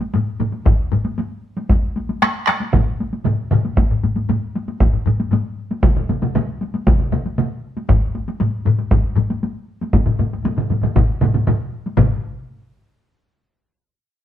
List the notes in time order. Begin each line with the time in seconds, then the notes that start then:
0.01 taiko high
0.14 taiko low-mid, taiko high
0.40 taiko low-mid, taiko high
0.52 taiko high
0.66 taiko, taiko low-mid, taiko high
0.92 taiko low-mid, taiko high
1.05 taiko high
1.18 taiko high
1.57 taiko high
1.70 taiko, taiko high
1.96 taiko high
2.09 taiko high
2.22 taiko rim, taiko high
2.47 taiko rim, taiko high
2.62 taiko high
2.73 taiko, taiko low-mid, taiko mid, taiko high
3.00 taiko high
3.13 taiko high
3.25 taiko low-mid, taiko mid, taiko high
3.51 taiko low-mid, taiko mid
3.65 taiko high
3.77 taiko, taiko low-mid, taiko high
3.91 taiko low-mid
4.03 taiko low-mid, taiko high
4.16 taiko low-mid, taiko high
4.29 taiko low-mid, taiko high
4.56 taiko high
4.68 taiko high
4.80 taiko, taiko low-mid, taiko high
4.93 taiko low-mid
5.06 taiko low-mid, taiko high
5.20 taiko high
5.32 taiko low-mid, taiko high
5.71 taiko high
5.83 taiko, taiko mid, taiko high
5.96 taiko mid
6.09 taiko mid, taiko high
6.22 taiko mid, taiko high
6.35 taiko mid, taiko high
6.61 taiko high
6.74 taiko high
6.87 taiko, taiko mid, taiko high
7.00 taiko mid
7.12 taiko mid, taiko high
7.26 taiko high
7.38 taiko mid, taiko high
7.77 taiko high
7.89 taiko, taiko low-mid, taiko high
8.15 taiko high
8.28 taiko high
8.40 taiko low-mid, taiko high
8.66 taiko low-mid, taiko high
8.79 taiko high
8.91 taiko, taiko low-mid, taiko high
9.16 taiko low-mid, taiko high
9.30 taiko high
9.43 taiko high
9.81 taiko high
9.93 taiko, taiko low-mid, taiko mid, taiko high
10.06 taiko low-mid, taiko mid
10.19 taiko low-mid, taiko mid, taiko high
10.33 taiko high
10.44 taiko low-mid, taiko mid, taiko high
10.57 taiko low-mid, taiko mid
10.70 taiko low-mid, taiko mid, taiko high
10.83 taiko low-mid, taiko mid, taiko high
10.96 taiko, taiko low-mid, taiko mid, taiko high
11.21 taiko low-mid, taiko mid, taiko high
11.34 taiko low-mid, taiko mid, taiko high
11.47 taiko low-mid, taiko mid, taiko high
11.86 taiko high
11.97 taiko, taiko low-mid, taiko mid, taiko high